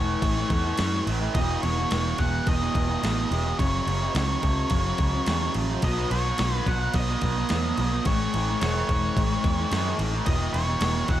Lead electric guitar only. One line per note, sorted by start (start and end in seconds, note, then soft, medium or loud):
0.00 1.02 C#5 medium
1.34 1.62 D#5 loud
1.62 2.20 C#5 medium
2.19 2.47 F#5 loud
2.48 3.58 D#5 loud
3.59 4.11 C#5 loud
4.17 5.52 C#5 medium
5.84 6.11 D#5 loud
6.11 6.56 C#5 loud
6.56 6.68 B4 loud
6.68 6.96 F#5 loud
6.95 8.06 D#5 loud
8.06 8.59 C#5 loud
8.60 9.95 C#5 medium
10.26 10.53 D#5 loud
10.53 11.10 C#5 loud
11.09 11.20 F#5 loud